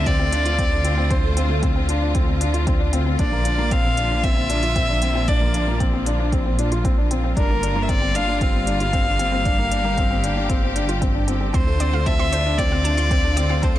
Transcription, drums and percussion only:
0.06 kick loud
0.06 closed hi-hat soft
0.32 closed hi-hat medium
0.45 closed hi-hat soft
0.59 kick loud
0.59 closed hi-hat soft
0.85 closed hi-hat medium
1.11 kick loud
1.11 closed hi-hat soft
1.37 closed hi-hat medium
1.63 kick loud
1.63 closed hi-hat soft
1.89 closed hi-hat medium
2.15 kick loud
2.15 closed hi-hat soft
2.41 closed hi-hat medium
2.54 closed hi-hat soft
2.67 kick loud
2.67 closed hi-hat soft
2.93 closed hi-hat medium
3.19 kick loud
3.19 closed hi-hat soft
3.45 closed hi-hat medium
3.71 kick loud
3.71 closed hi-hat soft
3.97 closed hi-hat medium
4.24 kick loud
4.24 closed hi-hat soft
4.50 closed hi-hat medium
4.63 closed hi-hat soft
4.76 kick loud
4.76 closed hi-hat soft
5.02 closed hi-hat medium
5.28 kick loud
5.28 closed hi-hat soft
5.54 closed hi-hat medium
5.80 kick loud
5.80 closed hi-hat soft
6.06 closed hi-hat medium
6.33 kick loud
6.33 closed hi-hat soft
6.59 closed hi-hat medium
6.72 closed hi-hat soft
6.85 kick loud
6.85 closed hi-hat soft
7.11 closed hi-hat medium
7.37 kick loud
7.37 closed hi-hat soft
7.63 closed hi-hat medium
7.89 kick loud
7.89 closed hi-hat soft
8.15 closed hi-hat medium
8.41 kick loud
8.41 closed hi-hat soft
8.67 closed hi-hat medium
8.80 closed hi-hat soft
8.93 kick loud
8.93 closed hi-hat soft
9.19 closed hi-hat medium
9.45 kick loud
9.45 closed hi-hat soft
9.72 closed hi-hat medium
9.98 kick loud
9.98 closed hi-hat soft
10.24 closed hi-hat medium
10.50 kick loud
10.50 closed hi-hat soft
10.76 closed hi-hat medium
10.89 closed hi-hat soft
11.02 kick loud
11.02 closed hi-hat soft
11.28 closed hi-hat medium
11.54 kick loud
11.54 closed hi-hat soft
11.80 closed hi-hat medium
12.06 kick loud
12.06 closed hi-hat soft
12.33 closed hi-hat medium
12.59 kick loud
12.59 closed hi-hat soft
12.85 closed hi-hat medium
12.98 closed hi-hat soft
13.11 kick loud
13.11 closed hi-hat soft
13.37 closed hi-hat medium
13.63 kick loud
13.63 closed hi-hat soft

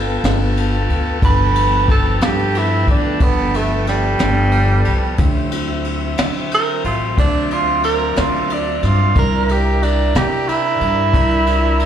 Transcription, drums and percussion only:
0.24 snare loud
0.24 ride medium
0.57 ride medium
0.90 ride medium
1.22 kick loud
1.22 ride medium
1.55 ride medium
1.88 kick medium
1.88 ride medium
2.21 snare loud
2.21 ride medium
2.55 ride medium
2.87 kick medium
2.87 ride medium
3.20 kick medium
3.20 ride medium
3.54 ride medium
3.87 snare soft
3.87 ride medium
4.19 snare loud
4.19 ride medium
4.52 ride medium
4.85 ride medium
5.18 kick loud
5.18 ride medium
5.51 ride medium
5.84 ride medium
6.18 snare loud
6.18 ride medium
6.51 ride medium
6.84 ride medium
7.18 kick medium
7.18 ride medium
7.51 ride medium
7.84 ride medium
8.16 snare medium
8.16 ride medium
8.50 ride medium
8.82 snare soft
8.82 ride medium
9.16 kick medium
9.16 ride medium
9.49 ride medium
9.82 ride medium
10.15 snare loud
10.15 ride medium
10.49 ride medium
10.81 ride medium
11.14 kick medium
11.14 ride medium
11.47 ride medium
11.80 ride medium

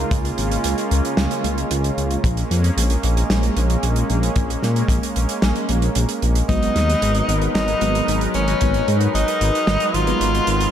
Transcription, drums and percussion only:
0.11 kick loud
0.11 closed hi-hat medium
0.25 closed hi-hat soft
0.38 closed hi-hat medium
0.51 closed hi-hat medium
0.64 closed hi-hat loud
0.78 closed hi-hat soft
0.91 closed hi-hat medium
1.05 closed hi-hat soft
1.17 snare loud
1.17 closed hi-hat medium
1.31 closed hi-hat medium
1.44 closed hi-hat medium
1.58 closed hi-hat medium
1.71 closed hi-hat loud
1.84 closed hi-hat medium
1.98 closed hi-hat soft
2.11 closed hi-hat soft
2.24 kick loud
2.24 closed hi-hat medium
2.37 closed hi-hat soft
2.51 closed hi-hat medium
2.64 closed hi-hat medium
2.78 closed hi-hat loud
2.90 closed hi-hat medium
3.03 closed hi-hat medium
3.17 closed hi-hat medium
3.30 snare loud
3.30 closed hi-hat loud
3.43 closed hi-hat medium
3.57 closed hi-hat medium
3.70 closed hi-hat soft
3.83 closed hi-hat medium
3.96 closed hi-hat medium
4.10 closed hi-hat medium
4.23 closed hi-hat medium
4.36 kick loud
4.36 closed hi-hat medium
4.50 closed hi-hat medium
4.62 snare soft
4.62 closed hi-hat medium
4.76 closed hi-hat soft
4.88 kick loud
4.88 closed hi-hat medium
5.03 closed hi-hat medium
5.16 closed hi-hat medium
5.29 closed hi-hat medium
5.42 snare loud
5.42 closed hi-hat loud
5.55 closed hi-hat soft
5.69 closed hi-hat medium
5.82 closed hi-hat medium
5.95 closed hi-hat loud
6.09 closed hi-hat medium
6.22 closed hi-hat soft
6.35 closed hi-hat medium
6.49 kick loud
6.49 closed hi-hat medium
6.63 closed hi-hat medium
6.76 snare soft
6.76 closed hi-hat medium
6.89 closed hi-hat medium
7.02 closed hi-hat medium
7.15 closed hi-hat soft
7.29 closed hi-hat medium
7.42 closed hi-hat soft
7.55 snare loud
7.55 closed hi-hat medium
7.68 closed hi-hat medium
7.81 closed hi-hat medium
7.95 closed hi-hat soft
8.08 closed hi-hat loud
8.21 closed hi-hat medium
8.34 closed hi-hat medium
8.48 closed hi-hat medium
8.61 kick loud
8.61 closed hi-hat medium
8.74 closed hi-hat medium
8.88 closed hi-hat medium
9.01 closed hi-hat soft
9.15 closed hi-hat medium
9.28 closed hi-hat medium
9.41 closed hi-hat medium
9.55 closed hi-hat soft
9.67 snare loud
9.67 closed hi-hat medium
9.80 closed hi-hat medium
9.94 closed hi-hat medium
10.07 closed hi-hat soft
10.21 closed hi-hat medium
10.35 closed hi-hat medium
10.47 closed hi-hat medium
10.61 closed hi-hat medium

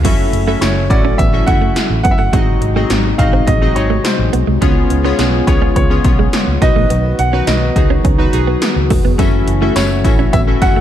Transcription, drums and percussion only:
0.05 kick loud
0.05 closed hi-hat loud
0.05 crash loud
0.33 closed hi-hat medium
0.62 snare loud
0.62 closed hi-hat medium
0.62 tambourine medium
0.90 kick medium
0.90 closed hi-hat medium
1.19 kick medium
1.19 closed hi-hat loud
1.48 kick loud
1.48 closed hi-hat medium
1.76 snare loud
1.76 closed hi-hat medium
1.76 tambourine medium
2.05 kick medium
2.05 closed hi-hat medium
2.33 kick loud
2.33 closed hi-hat loud
2.62 closed hi-hat medium
2.90 snare loud
2.90 closed hi-hat medium
2.90 tambourine medium
3.19 kick loud
3.19 closed hi-hat medium
3.48 kick medium
3.48 closed hi-hat loud
3.76 closed hi-hat medium
4.05 snare loud
4.05 closed hi-hat medium
4.05 tambourine medium
4.33 closed hi-hat medium
4.62 kick loud
4.62 closed hi-hat loud
4.90 closed hi-hat medium
5.19 snare loud
5.19 closed hi-hat medium
5.19 tambourine medium
5.47 kick medium
5.47 closed hi-hat medium
5.76 kick medium
5.76 closed hi-hat medium
6.04 kick loud
6.04 closed hi-hat medium
6.33 snare loud
6.33 closed hi-hat medium
6.33 tambourine medium
6.62 kick loud
6.62 closed hi-hat medium
6.90 closed hi-hat loud
7.19 closed hi-hat medium
7.47 snare loud
7.47 closed hi-hat medium
7.47 tambourine medium
7.76 kick medium
7.76 closed hi-hat medium
8.05 kick medium
8.05 closed hi-hat medium
8.33 closed hi-hat medium
8.62 snare loud
8.62 closed hi-hat medium
8.62 tambourine medium
8.90 kick medium
8.90 open hi-hat medium
9.19 kick loud
9.19 closed hi-hat loud
9.19 tambourine medium
9.48 closed hi-hat medium
9.76 snare loud
9.76 closed hi-hat medium
9.76 tambourine medium
10.05 kick medium
10.05 closed hi-hat medium
10.05 tambourine medium
10.33 kick medium
10.33 closed hi-hat medium
10.33 tambourine soft
10.62 kick loud
10.62 closed hi-hat medium
10.62 tambourine soft

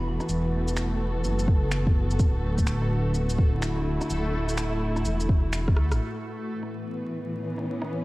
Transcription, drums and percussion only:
0.20 cross-stick medium
0.20 shaker soft
0.29 shaker soft
0.68 shaker soft
0.77 finger snap loud
0.77 shaker medium
1.24 shaker medium
1.39 shaker soft
1.48 kick medium
1.72 finger snap loud
1.72 shaker medium
1.87 kick loud
2.11 shaker soft
2.19 kick loud
2.19 shaker medium
2.58 kick medium
2.58 shaker medium
2.67 finger snap loud
2.67 shaker medium
2.82 cross-stick soft
3.14 shaker medium
3.30 shaker medium
3.39 kick medium
3.62 finger snap loud
3.62 shaker medium
3.77 cross-stick soft
4.01 cross-stick medium
4.01 shaker soft
4.10 shaker medium
4.49 shaker medium
4.57 finger snap loud
4.57 shaker medium
4.73 cross-stick soft
4.96 cross-stick medium
4.96 shaker soft
5.05 shaker medium
5.20 shaker medium
5.29 kick loud
5.53 finger snap loud
5.53 shaker medium
5.68 kick loud
5.68 cross-stick medium
5.76 cross-stick medium
5.91 cross-stick medium
5.91 shaker soft
6.63 cross-stick soft
7.58 cross-stick soft
7.82 cross-stick medium

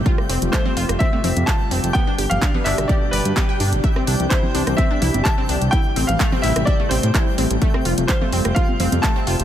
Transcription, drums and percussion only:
0.06 kick loud
0.06 closed hi-hat soft
0.18 cross-stick medium
0.30 open hi-hat loud
0.42 closed hi-hat medium
0.42 low conga medium
0.53 kick loud
0.53 clap loud
0.53 closed hi-hat medium
0.65 high conga medium
0.65 low conga medium
0.77 open hi-hat loud
0.89 cross-stick medium
0.89 closed hi-hat medium
1.00 kick loud
1.00 closed hi-hat soft
1.13 high conga medium
1.24 open hi-hat loud
1.24 low conga loud
1.37 closed hi-hat medium
1.37 high conga medium
1.48 kick loud
1.48 clap loud
1.48 closed hi-hat medium
1.71 open hi-hat loud
1.84 closed hi-hat medium
1.95 kick loud
1.95 closed hi-hat soft
2.19 open hi-hat loud
2.31 closed hi-hat medium
2.31 low conga medium
2.42 kick loud
2.42 clap loud
2.42 closed hi-hat medium
2.55 high conga medium
2.55 low conga medium
2.66 clap medium
2.66 open hi-hat loud
2.78 cross-stick medium
2.78 closed hi-hat medium
2.89 kick loud
2.89 closed hi-hat soft
3.13 open hi-hat loud
3.25 closed hi-hat medium
3.37 kick loud
3.37 clap loud
3.37 closed hi-hat soft
3.37 high conga medium
3.60 open hi-hat loud
3.73 closed hi-hat medium
3.84 kick loud
3.84 closed hi-hat soft
3.96 cross-stick medium
4.07 open hi-hat loud
4.20 closed hi-hat medium
4.20 low conga medium
4.31 kick loud
4.31 clap loud
4.31 closed hi-hat medium
4.43 high conga medium
4.43 low conga medium
4.55 open hi-hat loud
4.67 cross-stick medium
4.67 closed hi-hat medium
4.78 kick loud
4.78 closed hi-hat soft
4.91 high conga medium
5.02 open hi-hat loud
5.02 low conga medium
5.14 closed hi-hat medium
5.14 high conga medium
5.25 kick loud
5.25 clap loud
5.25 closed hi-hat soft
5.49 open hi-hat loud
5.62 closed hi-hat medium
5.73 kick loud
5.73 closed hi-hat soft
5.96 open hi-hat loud
6.09 closed hi-hat medium
6.09 low conga medium
6.20 kick loud
6.20 clap loud
6.20 closed hi-hat medium
6.32 high conga medium
6.32 low conga medium
6.44 open hi-hat loud
6.56 cross-stick medium
6.56 closed hi-hat medium
6.67 kick loud
6.67 closed hi-hat medium
6.91 open hi-hat loud
7.03 closed hi-hat medium
7.14 kick loud
7.14 clap loud
7.14 closed hi-hat medium
7.38 open hi-hat loud
7.51 closed hi-hat medium
7.62 kick loud
7.62 closed hi-hat medium
7.74 cross-stick medium
7.85 open hi-hat loud
7.98 closed hi-hat medium
7.98 low conga medium
8.09 kick loud
8.09 clap loud
8.09 closed hi-hat medium
8.21 high conga medium
8.21 low conga medium
8.33 open hi-hat loud
8.45 cross-stick medium
8.45 closed hi-hat medium
8.56 kick loud
8.56 closed hi-hat medium
8.69 high conga medium
8.80 open hi-hat loud
8.80 low conga medium
8.92 closed hi-hat medium
8.92 high conga medium
9.03 kick loud
9.03 clap loud
9.03 closed hi-hat medium
9.27 open hi-hat loud
9.40 closed hi-hat medium

